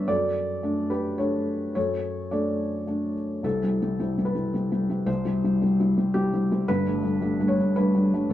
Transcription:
Already playing: G2 G3 B3 D4 B4 C#5 D5 E5
0.08 F#2 A4 D5
0.63 A3 D4
0.90 G4 B4
1.18 A3 D4 A4 C#5
1.75 F#2 A4 C#5
2.31 A3 D4 A4 D5
2.87 A3 D4
3.43 C2 C3 A4
3.63 G3 C4 E4
3.82 G3 C4 E4
3.99 G3 C4 E4
4.18 G3 C4 E4
4.25 B4
4.35 G3 C4 E4
4.54 G3 C4 E4
4.71 G3 C4 E4
4.89 G3 C4 E4
5.06 C2 C3 C5
5.25 G3 C4 E4
5.44 G3 C4 E4
5.62 G3 C4 E4
5.80 G3 C4 E4
5.97 G3 C4 E4
6.14 G3 C4 E4 G4
6.33 G3 C4 E4
6.51 G3 C4 E4
6.68 G1 G2 B4
6.87 G3 A3 D4
7.03 G3 A3 D4
7.21 G3 A3 D4
7.40 G3 A3 D4
7.48 C#5
7.58 G3 A3 D4
7.76 G3 A3 D4 B4
7.94 G3 A3 D4
8.14 G3 A3 D4
8.30 G1 A4

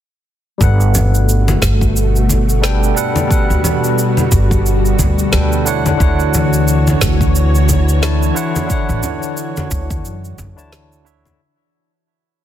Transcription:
0.58 G1 B2 G3 A3 D4 F#4 A4, kick, shaker
0.62 B4 F#5
0.80 shaker
0.95 low conga, shaker
1.15 shaker
1.29 shaker
1.48 high conga, shaker
1.62 G1, kick, snare, shaker
1.81 kick, shaker
1.96 shaker
2.16 shaker
2.29 kick, high conga, shaker
2.49 shaker
2.61 G3 D4 A4 B4 G5, snare, shaker
2.83 shaker
2.95 G3 D4 A4 B4 F#5, shaker
3.16 high conga, shaker
3.27 G3 D4 A4, kick
3.31 B4 F#5, shaker
3.50 D2, shaker
3.64 low conga, shaker
3.84 shaker
3.99 shaker
4.17 high conga, shaker
4.32 G1, kick, shaker
4.51 kick, shaker
4.66 shaker
4.85 shaker
4.99 D2, kick, high conga, shaker
5.19 shaker
5.31 D2 G3 D4 A4 B4 G5, snare, shaker
5.52 shaker
5.65 D3 E3 D4 E4 C#5 F#5, shaker
5.86 high conga, shaker
5.97 D2 D3 D4 E4, kick, shaker
6.01 C#5 F#5
6.20 shaker
6.34 low conga, shaker
6.53 shaker
6.68 shaker
6.87 high conga, shaker
7.01 D2, kick, snare, shaker
7.21 kick, shaker
7.35 shaker
7.55 shaker
7.69 kick, high conga, shaker
7.89 shaker
8.01 D3 D4 E4 C#5 A5, snare, shaker
8.23 shaker
8.34 D3 D4 E4 C#5 F#5, shaker
8.56 high conga, shaker
8.66 D3 D4 E4, kick, shaker
8.70 C#5 F#5
8.89 A1, shaker
9.03 low conga, shaker
9.23 shaker
9.37 shaker
9.57 high conga, shaker
9.71 D2, kick, shaker
9.90 kick, shaker
10.05 F#2, shaker
10.25 shaker
10.38 F#2, kick, high conga, shaker
10.56 D2 D3 D4 E4 C#5 A5, shaker
10.73 snare, shaker
10.92 shaker
11.04 D3 D4 E4 C#5 E5, shaker
11.25 high conga, shaker

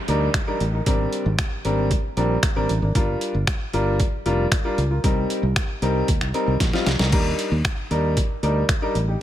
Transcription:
Already playing: downlifter
0.08 D2 G3 D4 D#4 A#4, closed hi-hat
0.34 finger snap, kick, closed hi-hat
0.47 G3 D4 D#4 A#4
0.60 A1, closed hi-hat
0.73 D#4 A#4
0.86 G#1 G3 C4 D4 A#4, kick, closed hi-hat
1.13 closed hi-hat
1.26 G#1
1.38 finger snap, kick, closed hi-hat
1.65 G#1 G3 C4 D4 A#4, closed hi-hat
1.91 kick, closed hi-hat
2.17 A#1 G3 C4 D4 A#4, closed hi-hat
2.43 finger snap, kick, closed hi-hat
2.56 G#1 G3 C4 D4 A#4
2.69 A1, closed hi-hat
2.82 G#1 D4 A#4
2.95 G1 G3 D4 F4 A#4, kick, closed hi-hat
3.21 closed hi-hat
3.34 G1
3.47 finger snap, kick, closed hi-hat
3.73 G1 G3 D4 F4 A#4, closed hi-hat
4.00 kick, closed hi-hat
4.26 F1 G3 D4 F4 A#4, closed hi-hat
4.52 finger snap, kick, closed hi-hat
4.64 G3 D4 F4 A#4
4.78 C#2, closed hi-hat
4.91 F4 A#4
5.04 C2 G3 C4 D#4 A#4, kick, closed hi-hat
5.30 closed hi-hat
5.43 C2
5.56 finger snap, kick, closed hi-hat
5.82 C2 G3 C4 D#4 A#4, closed hi-hat
6.08 D#2, kick, closed hi-hat
6.21 C2, finger snap
6.34 G3 C4 D#4 A#4, closed hi-hat
6.47 C2
6.60 A#1, kick, snare, closed hi-hat
6.73 G3 C4 D#4 F4, snare
6.86 C2, snare, closed hi-hat
6.99 C2 D#4 A#4, snare
7.12 D#2 G3 D4 D#4 A#4, kick, crash
7.39 closed hi-hat
7.52 D#2
7.65 finger snap, kick, closed hi-hat
7.91 D#2 G3 D4 D#4 A#4, closed hi-hat
8.17 kick, closed hi-hat
8.43 D2 G3 D4 D#4 A#4, closed hi-hat
8.69 finger snap, kick, closed hi-hat
8.82 G3 D4 D#4 A#4
8.95 A1, closed hi-hat
9.08 D#4 G4

